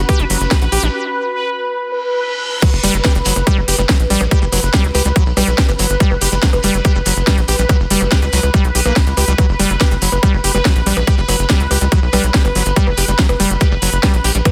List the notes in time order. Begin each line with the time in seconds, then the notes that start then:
Already playing: C#4 F#4 B4 F#5 C#6
0.09 G4, kick, closed hi-hat, percussion blips, shekere
0.19 F#1 C#4, closed hi-hat, shekere
0.30 F#1 F#3, open hi-hat, shekere
0.40 F#1, closed hi-hat, shekere
0.50 G4, kick, snare, closed hi-hat, percussion blips, shekere
0.62 A#1 F#4, closed hi-hat, shekere
0.72 A#1 G4, open hi-hat, shekere
0.83 A#1 C#4, closed hi-hat, shekere
1.78 reverse cymbal
2.62 F#3 B4, kick, closed hi-hat, crash, percussion blips, shekere
2.72 F#1, shekere
2.83 F#1 G3, open hi-hat, shekere
2.94 F#1 F#3, closed hi-hat, shekere
3.05 G4, kick, snare, closed hi-hat, percussion blips, shekere
3.15 F#1 G3, closed hi-hat, shekere
3.25 F#1 F#3, open hi-hat, shekere
3.36 F#1, closed hi-hat, percussion blips, shekere
3.47 G3, kick, closed hi-hat, shekere
3.57 F#1 F#3, shekere
3.68 F#1 G4, open hi-hat, shekere
3.78 F#1 G3, closed hi-hat, percussion blips, shekere
3.89 F#3, kick, snare, closed hi-hat, shekere
4.00 A#1, closed hi-hat, shekere
4.10 A#1 G3, open hi-hat, shekere
4.21 A#1 F#3, percussion blips
4.31 G4, kick, closed hi-hat, shekere
4.42 F#1 G3, shekere
4.52 F#1 F#3, open hi-hat, percussion blips, shekere
4.63 F#1, closed hi-hat, shekere
4.74 G3, kick, snare, closed hi-hat
4.84 C#2 F#3, closed hi-hat, shekere
4.94 C#2 G4, open hi-hat, percussion blips, shekere
5.05 C#2 G3, closed hi-hat, shekere
5.16 F#3, kick, closed hi-hat, shekere
5.26 B1, shekere
5.37 B1 G3, open hi-hat, percussion blips, shekere
5.47 B1 F#3, closed hi-hat, shekere
5.58 G4, kick, snare, closed hi-hat, shekere
5.69 G1 G3, closed hi-hat, percussion blips, shekere
5.79 G1 F#3, open hi-hat, shekere
5.90 G1, closed hi-hat, shekere
6.00 G3, kick, closed hi-hat, shekere
6.11 F#1 F#3, percussion blips, shekere
6.21 F#1 G4, open hi-hat, shekere
6.32 F#1 G3, shekere
6.43 F#3, kick, snare, closed hi-hat, shekere
6.53 F#1, closed hi-hat, percussion blips, shekere
6.63 F#1 G3, open hi-hat, shekere
6.74 F#1 F#3, closed hi-hat, shekere
6.84 G4, kick, closed hi-hat, percussion blips, shekere
6.95 F#1 G3, shekere
7.06 F#1 F#3, open hi-hat, shekere
7.16 F#1, closed hi-hat, shekere
7.27 G3, kick, snare, closed hi-hat, percussion blips, shekere
7.38 A#1 F#3, closed hi-hat, shekere
7.48 A#1 G4, open hi-hat, shekere
7.58 A#1 G3, closed hi-hat, shekere
7.69 F#3, kick, closed hi-hat, percussion blips, shekere
7.80 F#1, shekere
7.90 F#1 G3, open hi-hat, shekere
8.01 F#1 F#3, closed hi-hat, percussion blips, shekere
8.11 G4, kick, snare, closed hi-hat, shekere
8.22 C#2 G3, closed hi-hat, shekere
8.32 C#2 F#3, open hi-hat, shekere
8.43 C#2, closed hi-hat, percussion blips, shekere
8.54 G3, kick, closed hi-hat, shekere
8.64 B1 F#3, closed hi-hat, shekere
8.75 B1 G4, open hi-hat, shekere
8.86 B1 A#3, percussion blips
8.95 F#3, kick, snare, closed hi-hat, shekere
9.07 C#2, closed hi-hat, shekere
9.17 C#2 G4, open hi-hat, percussion blips, shekere
9.28 C#2 G3, closed hi-hat, shekere
9.38 F#3, kick, closed hi-hat, percussion blips, shekere
9.49 F#1, shekere
9.59 F#1 G3, open hi-hat, shekere
9.70 F#1 F#3, closed hi-hat, shekere
9.80 G4, kick, snare, closed hi-hat, percussion blips, shekere
9.91 F#1 G3, closed hi-hat, shekere
10.02 F#1 F#3, open hi-hat, shekere
10.12 F#1, closed hi-hat, percussion blips, shekere
10.23 G3, kick, closed hi-hat, shekere
10.33 F#1 F#3, shekere
10.44 F#1 G4, open hi-hat, shekere
10.55 F#1 G3, percussion blips, shekere
10.65 F#3, kick, snare, closed hi-hat, shekere
10.76 A#1, closed hi-hat, shekere
10.86 A#1 G3, open hi-hat, shekere
10.97 A#1 F#3, percussion blips, shekere
11.07 G4, kick, closed hi-hat, shekere
11.18 F#1 G3, shekere
11.28 F#1 F#3, open hi-hat, percussion blips, shekere
11.39 F#1, closed hi-hat, shekere
11.49 G3, kick, snare, closed hi-hat, shekere
11.60 C#2 F#3, closed hi-hat, shekere
11.71 C#2 G4, open hi-hat, percussion blips, shekere
11.81 C#2 G3, closed hi-hat
11.92 F#3, kick, closed hi-hat, shekere
12.02 B1, shekere
12.13 B1 G3, open hi-hat, percussion blips, shekere
12.24 B1 F#3, closed hi-hat
12.33 G4, kick, snare, closed hi-hat, shekere
12.45 G1 G3, closed hi-hat, percussion blips, shekere
12.55 G1 F#3, open hi-hat, shekere
12.65 G1, closed hi-hat, shekere
12.76 G3, kick, closed hi-hat, shekere
12.87 F#1 F#3, percussion blips, shekere
12.97 F#1 G4, open hi-hat, shekere
13.08 F#1 G3, closed hi-hat, shekere
13.19 F#3, kick, snare, closed hi-hat, shekere
13.29 F#1, closed hi-hat, percussion blips, shekere
13.40 F#1 G3, open hi-hat, shekere
13.50 F#1 F#3, closed hi-hat, shekere
13.60 G4, kick, closed hi-hat, percussion blips, shekere
13.71 F#1 G3, shekere
13.82 F#1 F#3, open hi-hat, shekere
13.92 F#1, closed hi-hat, shekere
14.03 G3, kick, snare, closed hi-hat, percussion blips, shekere
14.13 A#1 F#3, closed hi-hat, shekere
14.24 A#1 G4, open hi-hat, shekere
14.35 A#1 G3, closed hi-hat, shekere
14.45 F#3, kick, closed hi-hat, percussion blips, shekere